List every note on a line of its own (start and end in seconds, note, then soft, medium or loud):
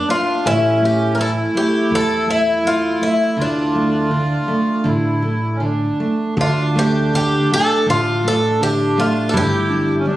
0.00 0.49 D4 medium
0.09 0.44 A#3 medium
0.09 0.47 F4 medium
0.45 1.40 A1 loud
0.45 0.80 A3 medium
0.45 1.20 C#4 medium
0.45 0.83 E4 medium
0.82 1.17 A3 medium
0.82 1.14 G4 medium
1.15 1.53 A3 medium
1.15 3.43 E4 loud
1.15 1.20 A#4 medium
1.21 1.30 A4 loud
1.55 1.89 A3 medium
1.55 1.93 G4 medium
1.90 2.86 E2 medium
1.90 2.26 A3 medium
1.95 2.30 A4 medium
2.27 2.62 A3 soft
2.27 2.66 E4 medium
2.64 2.99 A3 medium
2.64 3.03 F4 loud
3.01 3.36 A3 medium
3.01 3.36 E4 medium
3.37 4.34 D2 medium
3.37 4.10 D3 medium
3.37 4.90 F4 medium
3.42 5.60 D4 medium
3.75 4.10 A3 soft
4.11 4.47 D3 soft
4.48 4.84 A3 medium
4.84 5.85 A1 medium
4.84 5.21 D3 medium
4.84 5.57 E4 medium
5.22 5.60 A3 soft
5.55 5.62 C#4 medium
5.60 5.98 D3 soft
5.60 6.35 D4 medium
6.00 6.37 A3 soft
6.37 7.34 D2 loud
6.37 7.12 D3 medium
6.37 9.43 D4 medium
6.41 6.78 F4 medium
6.75 7.12 A3 medium
6.75 7.14 G4 medium
7.14 7.50 D3 medium
7.14 7.53 G4 medium
7.51 7.87 A3 medium
7.51 7.87 A4 loud
7.86 9.35 A1 medium
7.86 8.24 D3 medium
7.86 8.27 F4 medium
8.24 8.60 A3 medium
8.24 8.63 A4 loud
8.61 8.96 D3 medium
8.61 8.99 G4 medium
8.98 9.33 A3 medium
8.98 9.29 F4 medium
9.29 9.95 E4 loud
9.29 9.35 A4 medium
9.34 10.17 G1 loud
9.34 10.04 G3 medium
9.34 10.17 G4 medium
9.70 10.05 D4 medium
9.99 10.06 C#4 medium
10.06 10.17 G3 medium
10.06 10.17 D4 medium